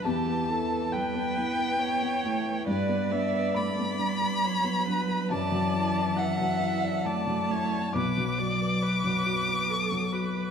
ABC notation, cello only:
X:1
M:3/4
L:1/8
Q:1/4=69
K:Bm
V:1 name="Cello" clef=bass
E,2 G, B, B, A, | G, B, A, G, F,2 | E,4 A,2 | F,6 |]